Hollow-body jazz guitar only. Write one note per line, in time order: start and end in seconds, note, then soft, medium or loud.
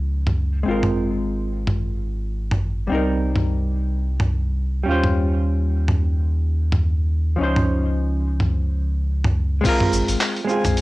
0.00 0.62 F3 medium
0.00 0.63 C#4 medium
0.00 0.65 D#4 soft
0.00 0.66 C5 medium
0.63 2.87 G#3 medium
0.63 2.88 C4 medium
0.68 2.89 F4 medium
0.68 2.90 A#4 medium
2.87 4.82 G3 medium
2.87 4.83 C4 medium
2.92 4.85 D#4 medium
2.92 4.86 A#4 medium
4.83 7.35 G3 medium
4.83 7.36 C#4 medium
4.89 7.38 F4 medium
4.89 7.39 C5 medium
7.36 9.59 F3 medium
7.36 9.61 C#4 medium
7.41 9.62 D#4 medium
7.41 9.63 C5 medium
9.61 10.43 G#3 medium
9.61 10.45 C4 medium
9.66 10.46 F4 medium
9.66 10.48 A#4 medium
10.44 10.81 G#3 medium
10.44 10.81 C4 medium
10.50 10.81 F4 medium
10.50 10.81 G#4 medium